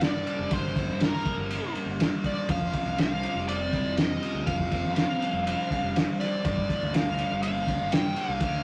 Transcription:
Already playing: G3 D4
0.01 G2 A#3 D5, snare, ride
0.27 D4, ride
0.39 F1
0.51 G1 G2 C5, kick, ride
0.76 A#3, kick, ride
0.89 G2
1.00 G3 A#4, snare, ride
1.14 snare
1.25 D4, kick, ride
1.38 G1
1.51 A#3, ride
1.75 G3, ride
1.86 G1
1.99 A#3, snare, ride
2.24 D4 D5, kick, ride
2.49 F1 F3 F5, kick, ride
2.61 kick
2.73 C4, kick, ride
2.86 C2
2.98 G3 F5, snare, ride
3.23 F4, ride
3.35 F1
3.48 C4 D5, ride
3.73 C2 G3, kick, ride
3.84 F1
3.97 F2 C4 D#5, snare, ride
4.23 F4, ride
4.35 D2
4.46 F1 F3 F5, kick, ride
4.59 kick
4.72 C4, kick, ride
4.83 F2
4.94 G3 F5, snare, ride
5.22 F4, ride
5.33 F1
5.47 C4, ride
5.71 G3, kick, ride
5.82 F1
5.96 C4, snare, ride
6.20 F4 D5, snare, ride
6.44 G1 G2, kick, ride
6.57 kick
6.69 A#3, kick, ride
6.83 D2
6.94 G3 F5, snare, ride
7.18 D4, ride
7.31 G1
7.42 A#3 F5, ride
7.67 D2 G3, kick, ride
7.82 G1
7.92 G2 A#3 G5, snare, ride
8.16 D4 F5, ride
8.28 C2
8.40 D2 D3, kick, ride

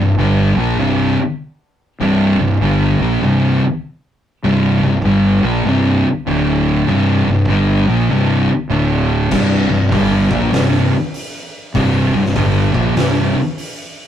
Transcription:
Already playing: C1 C2 G2
0.18 G1 G2 D3 G3
0.56 A#1 A#2 F3 A#3
0.79 C1 C2 G2 C3
2.00 C1 C2 G2 C3
2.39 C1 C2 G2
2.61 G1 G2 D3 G3
3.00 A#1 A#2 F3 A#3
3.22 C1 C2 G2 C3
4.44 C1 C2 G2 C3
4.83 C1 C2 G2
5.05 G1 G2 D3 G3
5.43 A#1 A#2 F3 A#3
5.65 C1 C2 G2 C3
6.27 D1 D2 A2 D3
6.87 C1 C2 G2 C3
7.27 C1 C2 G2
7.49 G1 G2 D3 G3
7.87 A#1 A#2 F3 A#3
8.09 C1 C2 G2 C3
8.70 D1 D2 A2 D3
9.31 C1 C2 G2 C3, kick, crash
9.70 C1 C2 G2
9.92 G1 G2 D3 G3, kick, open hi-hat
10.30 A#1 A#2 F3 A#3, kick
10.52 C1 C2 G2 C3, snare, open hi-hat
11.14 open hi-hat
11.75 C1 C2 G2 C3, kick, open hi-hat
12.13 C1 C2 G2
12.25 snare
12.36 G1 G2 D3 G3, kick, open hi-hat
12.74 A#1 A#2 F3 A#3, kick
12.96 C1 C2 G2 C3, snare, open hi-hat
13.58 open hi-hat

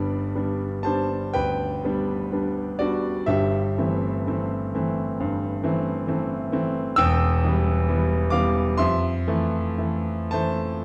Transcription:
Already playing: G1 G2 G3 B3 D4 D5 B5
0.35 G3 B3 D4
0.83 G3 B3 D4 C5 A5
1.34 D2 B4 G5
1.84 G3 B3 D4
2.32 G3 B3 D4
2.79 G3 B3 D4 F#4 D5
3.26 G1 G2 G4 E5
3.78 E3 A3 C4
4.27 E3 A3 C4
4.75 E3 A3 C4
5.20 G2
5.64 E3 A3 C4
6.07 E3 A3 C4
6.52 E3 A3 C4
6.96 E1 E2 G5 E6
7.45 E3 G3 B3
7.88 E3 G3 B3
8.30 E3 G3 B3 F5 D6
8.78 F2 E5 C6
9.28 E3 A3
9.78 E3 A3
10.31 E3 A3 C5 A5

